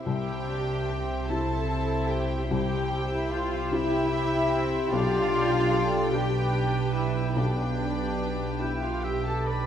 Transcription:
Already playing: harp G3 C4 G4
0.05 double bass section C2, felt piano C2, harp C3, viola section E4 G4, cello section G4, violin section C5 E5 G5
0.46 harp C4, viola section D4
0.88 viola section C4, harp G4
1.28 felt piano C4 E4 G4, french horn section C4, viola section E4, cello section A4, harp C5, violin section E5 A5
2.10 harp C4, cello section G4, violin section G5
2.51 felt piano C2, harp C3, viola section E4 G4, french horn section G4, cello section G4, violin section G5
2.91 harp G3
3.11 cello section E4, violin section E5
3.31 cello section F4, harp G4, violin section F5
3.71 felt piano C4 E4 G4, cello section E4, viola section G4, harp C5, violin section E5 G5
4.12 harp E4, viola section G4
4.52 harp C4, viola section C4
4.91 double bass section B1, felt piano B1, harp B2, viola section D4 G4, cello section F4, violin section D5 F5 G5
5.31 harp D4, viola section G4
5.72 harp G4, viola section A4
6.12 felt piano D4 G4, viola section D4 G4, cello section G4, violin section B4 G5, harp D5
6.53 harp D4
6.94 cello section E4, violin section E5
7.35 felt piano B1, harp B2, french horn section B3, cello section D4, viola section G4, violin section B4 D5 G5
7.78 harp D4
8.19 harp G4
8.61 felt piano D4 G4, cello section E4, harp D5, violin section E5, oboe G5
8.84 cello section F4, violin section F5
9.04 harp D4, cello section G4, oboe E5, violin section G5
9.26 cello section A4, violin section A5
9.47 cello section B4, oboe D5, violin section B5

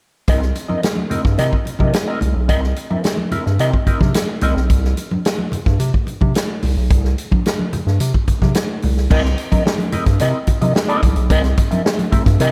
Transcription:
0.28 analog synth bass C2, clean electric guitar C4 E4 A#4 D#5, kick, closed hi-hat, muted conga
0.42 muted clean electric guitar stroke, snare
0.55 muted clean electric guitar stroke, closed hi-hat, muted conga
0.68 analog synth bass G2, clean electric guitar C4 E4 A#4 D#5, high conga
0.82 muted clean electric guitar stroke, snare, closed hi-hat, muted conga
0.97 high conga
1.10 analog synth bass G2, clean electric guitar C4 E4 A#4 D#5, closed hi-hat, low conga
1.24 analog synth bass G2, muted clean electric guitar stroke, kick, snare
1.38 analog synth bass C3, clean electric guitar C4 E4 A#4 D#5, closed hi-hat, muted conga
1.53 kick
1.65 analog synth bass C3, muted clean electric guitar stroke, closed hi-hat, muted conga
1.79 analog synth bass C3, clean electric guitar C4 E4 A#4 D#5, kick, high conga
1.93 snare, closed hi-hat, muted conga
2.08 clean electric guitar C4 E4 A#4 D#5
2.21 analog synth bass C2, muted clean electric guitar stroke, closed hi-hat, muted conga, low conga
2.34 analog synth bass B1, muted clean electric guitar stroke
2.48 analog synth bass C2, clean electric guitar C4 E4 A#4 D#5, kick, closed hi-hat, muted conga
2.63 muted clean electric guitar stroke, snare
2.76 muted clean electric guitar stroke, closed hi-hat
2.90 analog synth bass G2, clean electric guitar C4 E4 A#4 E5, high conga
3.04 muted clean electric guitar stroke, snare, closed hi-hat, muted conga
3.17 high conga
3.31 analog synth bass G2, clean electric guitar C4 E4 A#4 E5, closed hi-hat, muted conga, low conga
3.46 analog synth bass G2, muted clean electric guitar stroke, snare
3.59 analog synth bass C3, clean electric guitar C4 E4 A#4 D#5, closed hi-hat
3.73 muted clean electric guitar stroke, kick
3.87 analog synth bass C3, clean electric guitar C4 E4 A#4 D#5, kick, closed hi-hat
4.00 analog synth bass C3, muted clean electric guitar stroke, kick, snare, high conga
4.14 muted clean electric guitar stroke, snare, closed hi-hat
4.29 muted clean electric guitar stroke
4.41 analog synth bass C2, clean electric guitar C4 E4 A#4 D#5, closed hi-hat, muted conga, low conga
4.57 analog synth bass B1, muted clean electric guitar stroke, snare
4.70 analog synth bass C2, kick, closed hi-hat
4.85 snare
4.97 closed hi-hat, muted conga
5.11 analog synth bass G2, high conga
5.25 snare, closed hi-hat
5.38 high conga
5.52 analog synth bass G2, closed hi-hat, muted conga, low conga
5.66 analog synth bass G2, kick, snare
5.79 analog synth bass C3, closed hi-hat, muted conga
5.94 kick
6.07 analog synth bass C3, closed hi-hat, muted conga
6.21 analog synth bass C3, kick, high conga
6.34 snare, closed hi-hat, muted conga
6.62 analog synth bass C2, open hi-hat, muted conga, low conga
6.77 analog synth bass B1
6.90 analog synth bass C2, kick, closed hi-hat, muted conga
7.05 snare
7.18 closed hi-hat
7.31 analog synth bass G2, kick, high conga
7.46 snare, closed hi-hat, muted conga
7.59 high conga
7.73 analog synth bass G2, closed hi-hat, low conga
7.87 analog synth bass G2, snare
8.00 analog synth bass C3, closed hi-hat, muted conga
8.14 kick
8.28 analog synth bass C3, kick, closed hi-hat, muted conga
8.42 analog synth bass C3, kick, snare, high conga
8.55 snare, closed hi-hat, muted conga
8.82 analog synth bass C2, open hi-hat, low conga
8.97 snare
9.10 analog synth bass C2, clean electric guitar C4 E4 A#4 D#5, kick, crash, muted conga, low conga
9.24 muted clean electric guitar stroke, snare
9.37 muted clean electric guitar stroke, closed hi-hat
9.52 analog synth bass G2, clean electric guitar C4 E4 A#4 D#5, kick, closed hi-hat, high conga
9.66 snare, muted conga
9.79 closed hi-hat, high conga
9.92 analog synth bass G2, clean electric guitar C4 E4 A#4 D#5, closed hi-hat, low conga
10.06 analog synth bass G2, muted clean electric guitar stroke, kick, snare, closed hi-hat
10.19 analog synth bass C3, clean electric guitar C4 E4 A#4 D#5, closed hi-hat, muted conga
10.47 analog synth bass C3, muted clean electric guitar stroke, kick, closed hi-hat, muted conga
10.61 analog synth bass C3, clean electric guitar C4 E4 A#4 D#5, closed hi-hat, high conga
10.75 muted clean electric guitar stroke, snare, muted conga
10.88 clean electric guitar C4 E4 A#4 D#5, closed hi-hat
11.03 analog synth bass C2, muted clean electric guitar stroke, kick, closed hi-hat, high conga, low conga
11.16 analog synth bass B1, muted clean electric guitar stroke, closed hi-hat
11.30 analog synth bass C2, clean electric guitar C4 E4 A#4 D#5, kick, closed hi-hat, low conga
11.44 muted clean electric guitar stroke, snare, closed hi-hat
11.57 muted clean electric guitar stroke, kick, closed hi-hat, muted conga
11.71 analog synth bass G2, clean electric guitar C4 E4 A#4 E5, closed hi-hat, high conga
11.84 muted clean electric guitar stroke, snare, muted conga
11.99 closed hi-hat, high conga
12.12 analog synth bass G2, clean electric guitar C4 E4 A#4 E5, kick, closed hi-hat, low conga
12.25 analog synth bass G2, muted clean electric guitar stroke, kick, snare, closed hi-hat
12.40 analog synth bass C3, clean electric guitar C4 E4 A#4 D#5, closed hi-hat, muted conga

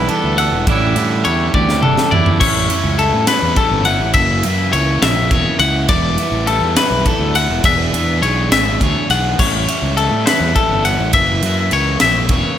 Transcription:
Already playing: clean electric guitar E2 E3 G3 E4
0.09 overdriven electric guitar E3 G3 B3 E4, clean electric guitar D4 A4, ride
0.24 fingered electric bass D2
0.38 overdriven electric guitar E3 G3 B3 E4, clean electric guitar A4 F#5, ride
0.52 fingered electric bass E1
0.67 fingered electric bass A1, clean electric guitar A2 D3 G3 D4 E5, overdriven electric guitar E3 G3 C#4 E4, kick, ride
0.71 clean electric guitar E4
0.96 fingered electric bass A2, clean electric guitar D3, overdriven electric guitar E3 G3 C#4 E4, ride
1.25 fingered electric bass E2, overdriven electric guitar E3 G3 C#4 E4, clean electric guitar G3 C#5, ride
1.54 fingered electric bass D2, overdriven electric guitar E3 G3 C#4 E4, clean electric guitar G4 D5, kick, high tom
1.69 snare
1.82 fingered electric bass G1, overdriven electric guitar E3 G3 C#4 E4, clean electric guitar D4 A4, mid tom
1.98 snare
2.11 fingered electric bass E2, overdriven electric guitar E3 G3 C#4 E4, clean electric guitar E4 D5, floor tom
2.26 floor tom
2.40 fingered electric bass A1, overdriven electric guitar E3 G3 C#4 E4, clean electric guitar C#5, kick, crash
2.70 overdriven electric guitar E3 G3 C#4 E4, ride
2.84 fingered electric bass C#2
2.98 overdriven electric guitar E3 G3 C#4 E4, clean electric guitar A4, ride
3.13 fingered electric bass A2
3.27 overdriven electric guitar E3 G3 C#4 E4, clean electric guitar B4, snare, ride
3.42 fingered electric bass E2
3.56 overdriven electric guitar E3 G3 C#4 E4, clean electric guitar A4, kick, ride
3.71 fingered electric bass G1
3.85 overdriven electric guitar E3 G3 C#4 E4, clean electric guitar F#5, ride
4.00 fingered electric bass A1
4.14 fingered electric bass F#1, overdriven electric guitar C#3 E3 A#3 E4, clean electric guitar E5, kick, ride
4.43 fingered electric bass F#2, overdriven electric guitar C#3 E3 A#3 E4, ride
4.73 fingered electric bass C#2, overdriven electric guitar C#3 E3 A#3 E4, clean electric guitar C#5, ride
5.02 fingered electric bass A#1, overdriven electric guitar C#3 E3 A#3 E4, clean electric guitar E5, snare, ride
5.30 fingered electric bass E1, overdriven electric guitar C#3 E3 A#3 E4, clean electric guitar C#5, kick, ride
5.59 fingered electric bass C#2, overdriven electric guitar C#3 E3 A#3 E4, clean electric guitar F#5, ride
5.88 fingered electric bass E1, overdriven electric guitar E3 G3 B3 E4, clean electric guitar D5, kick, ride
6.18 overdriven electric guitar E3 G3 B3 E4, ride
6.32 fingered electric bass A1
6.47 overdriven electric guitar E3 G3 B3 E4, clean electric guitar A4, ride
6.61 fingered electric bass E2
6.76 overdriven electric guitar E3 G3 B3 E4, clean electric guitar B4, snare, ride
6.90 fingered electric bass B1
7.06 overdriven electric guitar E3 G3 B3 E4, clean electric guitar A4, kick, ride
7.19 fingered electric bass D2
7.35 overdriven electric guitar E3 G3 B3 E4, clean electric guitar F#5, ride
7.50 fingered electric bass E1
7.64 fingered electric bass E1, overdriven electric guitar E3 B3 D4 G#4, clean electric guitar E5, kick, ride
7.93 fingered electric bass E2, overdriven electric guitar E3 B3 D4 G#4, ride
8.22 fingered electric bass B1, overdriven electric guitar E3 B3 D4 G#4, clean electric guitar C#5, ride
8.50 fingered electric bass G#1, overdriven electric guitar E3 B3 D4 G#4, clean electric guitar E5, snare, ride
8.80 fingered electric bass D2, overdriven electric guitar E3 B3 D4 G#4, clean electric guitar C#5, kick, ride
9.10 fingered electric bass B1, overdriven electric guitar E3 B3 D4 G#4, clean electric guitar F#5, ride
9.39 fingered electric bass A1, overdriven electric guitar E3 G3 C#4 E4, clean electric guitar C#5, kick, crash
9.68 overdriven electric guitar E3 G3 C#4 E4, ride
9.82 fingered electric bass C#2
9.97 overdriven electric guitar E3 G3 C#4 E4, clean electric guitar A4, ride
10.11 fingered electric bass A2
10.26 overdriven electric guitar E3 G3 C#4 E4, clean electric guitar B4, snare, ride
10.40 fingered electric bass E2
10.55 overdriven electric guitar E3 G3 C#4 E4, clean electric guitar A4, kick, ride
10.69 fingered electric bass G1
10.85 overdriven electric guitar E3 G3 C#4 E4, clean electric guitar F#5, ride
10.99 fingered electric bass A1
11.13 fingered electric bass F#1, overdriven electric guitar C#3 E3 A#3 E4, clean electric guitar E5, kick, ride
11.42 fingered electric bass F#2, overdriven electric guitar C#3 E3 A#3 E4, ride
11.71 fingered electric bass C#2, overdriven electric guitar C#3 E3 A#3 E4, clean electric guitar C#5, ride
12.00 fingered electric bass A#1, overdriven electric guitar C#3 E3 A#3 E4, clean electric guitar E5, snare, ride
12.29 fingered electric bass E1, overdriven electric guitar C#3 E3 A#3 E4, clean electric guitar C#5, kick, ride

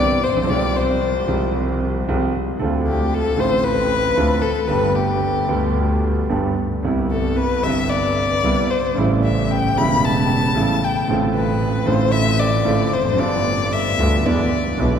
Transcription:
Already playing: double bass C2, grand piano C3 E3 B3 C4, violin D5
0.00 grand piano C2 G4
0.24 double bass A#1, violin C5
0.31 grand piano A1
0.36 grand piano A#1
0.43 grand piano B1 F3
0.49 grand piano C2 C3 G#3 C4 G4, double bass C2, violin D5
0.76 violin C5
1.27 grand piano C2 C3 F3 G#3 C4 G4, double bass C2
2.07 double bass C2, grand piano C2 C3 F3 G#3 C4 G4
2.59 double bass D2, grand piano D2 D3 A3 C4 F4
2.88 violin G4
3.14 violin A4
3.36 double bass A1, grand piano A1 A2 D3 A3 C4 F4, violin C5
3.65 violin B4
4.17 grand piano D2 D3 A3 C4 F4, double bass D2
4.42 violin A4
4.67 double bass G1, grand piano G1 G2 D3 G3 B3, violin B4
4.71 grand piano G4
4.96 violin G4
5.48 double bass D2, grand piano D2 D3 G3 B3 G4
6.29 grand piano G1 G2 D3 G3 B3 G4, double bass G1
6.83 grand piano C2 C3 G3 B3 E4, double bass C2
7.11 violin A4
7.37 violin B4
7.63 double bass G1, grand piano G1 G2 C3 G3 B3 E4, violin E5
7.90 violin D5
8.44 double bass C2, grand piano C2 C3 G3 B3 E4
8.71 violin C5
8.95 double bass A1, grand piano A1 A2 C#3 G3 A3
8.99 grand piano E4
9.24 violin E5
9.51 violin G5
9.76 double bass E1, grand piano E1 E2 C#3 G3 A3 E4, violin B5
10.05 violin A5
10.54 double bass A1, grand piano A1 A2 C#3 G3 A3 E4
10.84 violin G5
11.07 double bass A1, grand piano A1 A2 D3 A3 C4
11.12 grand piano F4
11.34 violin B4
11.86 double bass A1, grand piano A1 A2 D3 A3 C4 F4, violin C5
12.12 violin E5
12.40 violin D5
12.65 grand piano A1 A2 D3 A3 C4 F4, double bass A1
12.92 double bass F1, violin C5
12.99 grand piano E2
13.05 grand piano F2
13.12 grand piano F#2
13.17 double bass G1, grand piano G1 G2 D3 G3 B3 F4, violin D5
13.72 violin E5
13.97 double bass D2, grand piano D2 D3 G3 B3 F4
14.25 double bass E2, grand piano E2 D3 E3 G#3 B3 E4, violin D5
14.78 double bass B1, grand piano B1 B2 D3 G#3 B3 E4

